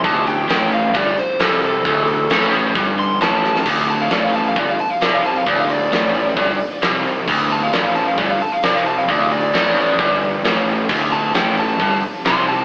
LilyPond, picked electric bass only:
\new Staff \with { instrumentName = "Picked electric bass" } { \clef bass \time 4/4 \key d \minor \tempo 4 = 133 d,,4 a,,4 g,,8 r8 c,4 | d,,4 a,,4 g,,4 a,,4 | d,,4 a,,4 g,,8 r8 c,4 | d,,4 a,,4 g,,8 r8 c,4 |
d,,4 a,,4 g,,8 r8 c,4 | d,,4 a,,4 g,,4 a,,4 | d,,4 a,,4 g,,8 r8 c,4 | }